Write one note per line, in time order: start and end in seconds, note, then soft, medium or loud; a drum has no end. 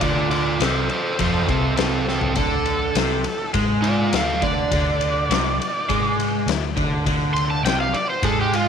0.01 0.57 D2 medium
0.01 0.60 D3 medium
0.01 0.30 F4 medium
0.01 0.30 D5 loud
0.01 kick medium
0.01 ride medium
0.31 0.59 F4 medium
0.31 0.60 D5 medium
0.31 ride medium
0.60 0.88 C2 medium
0.60 0.90 C3 loud
0.60 0.89 A4 medium
0.60 0.90 C5 medium
0.60 snare loud
0.60 ride loud
0.89 1.18 A4 medium
0.89 1.20 C5 medium
0.89 muted picked electric bass stroke soft
0.89 muted overdriven electric guitar stroke medium
0.89 ride medium
1.19 1.47 F2 medium
1.19 1.48 F3 loud
1.19 1.47 A4 medium
1.19 1.49 C5 medium
1.19 kick medium
1.19 ride medium
1.48 2.33 C2 medium
1.48 2.36 C3 medium
1.48 1.76 C4 medium
1.48 1.76 A4 medium
1.48 kick loud
1.48 ride medium
1.77 2.05 C4 medium
1.77 2.06 A4 medium
1.77 snare loud
1.77 ride medium
2.08 2.36 C4 medium
2.08 2.35 A4 medium
2.08 snare medium
2.21 floor tom medium
2.36 2.92 D2 medium
2.36 2.96 D3 loud
2.36 3.51 A4 loud
2.36 kick loud
2.36 ride medium
2.66 ride medium
2.95 3.23 C2 medium
2.95 3.25 C3 loud
2.95 snare loud
2.95 ride loud
3.24 muted picked electric bass stroke soft
3.24 muted overdriven electric guitar stroke medium
3.24 ride medium
3.54 4.09 G#2 medium
3.54 4.12 G#3 loud
3.54 kick loud
3.54 ride medium
3.82 4.12 F4 medium
3.82 4.12 D5 medium
3.82 ride medium
4.13 4.40 D2 medium
4.13 4.38 D3 medium
4.13 4.42 A4 medium
4.13 4.43 F5 medium
4.13 snare loud
4.13 ride loud
4.42 4.70 D2 medium
4.42 4.71 D3 loud
4.42 6.15 D5 loud
4.42 kick loud
4.42 ride medium
4.71 5.26 D2 loud
4.71 5.30 D3 loud
4.71 kick loud
4.71 ride medium
5.01 ride medium
5.29 5.57 C2 medium
5.29 5.59 C3 medium
5.29 snare loud
5.29 ride loud
5.58 muted picked electric bass stroke soft
5.58 muted overdriven electric guitar stroke medium
5.58 ride medium
5.89 6.44 G#2 medium
5.89 6.47 G#3 loud
5.89 kick medium
5.89 ride medium
6.20 ride medium
6.46 6.74 D2 medium
6.46 6.72 D3 medium
6.46 snare loud
6.46 ride medium
6.76 7.04 D2 medium
6.76 7.06 D3 loud
6.76 kick loud
6.76 ride medium
7.06 7.61 D2 loud
7.06 7.64 D3 loud
7.06 kick medium
7.06 ride medium
7.34 7.49 C6 loud
7.34 ride medium
7.50 7.65 A5 medium
7.63 7.92 C2 medium
7.63 7.93 C3 loud
7.63 7.79 G5 medium
7.63 snare loud
7.63 ride medium
7.81 7.95 F5 medium
7.93 8.08 D5 medium
7.93 muted picked electric bass stroke soft
7.93 muted overdriven electric guitar stroke medium
7.93 ride medium
8.10 8.24 C5 loud
8.22 8.68 G#2 loud
8.22 8.68 G#3 loud
8.22 8.39 A4 medium
8.22 kick loud
8.22 ride medium
8.41 8.54 G4 medium
8.53 8.68 F4 medium
8.53 ride medium